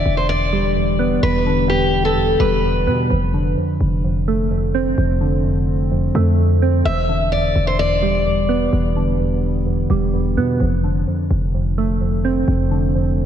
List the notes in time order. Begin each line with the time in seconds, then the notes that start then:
Already playing: E2 D3 D5
0.06 E1
0.17 C5
0.29 E2 D5
0.53 G3
0.76 E2
0.99 B3
1.23 E1 E2 B4
1.46 D3
1.69 E2 G4
2.05 A4
2.16 E2
2.40 E1 G3 B4
2.64 E2
2.87 B2 B3
3.10 F1 F2
3.34 D3
3.57 F2
3.81 F1
4.04 F2
4.28 A3
4.51 F2
4.74 C4
4.98 F1 F2
5.21 D3
5.45 F2
5.91 F2
6.15 F2 A3
6.39 F2
6.62 C4
6.85 E1 E2 E5
7.09 D3
7.32 E2 D5
7.56 E1
7.67 C5
7.79 E2 D5
8.03 G3
8.26 E2
8.49 B3
8.73 E1 E2
8.96 D3
9.20 E2
9.66 E2
9.90 E1 G3
10.14 E2
10.37 B2 B3
10.60 F1 F2
10.84 D3
11.07 F2
11.31 F1
11.54 F2
11.78 A3
12.01 F2
12.25 C4
12.48 F1 F2
12.71 D3
12.95 F2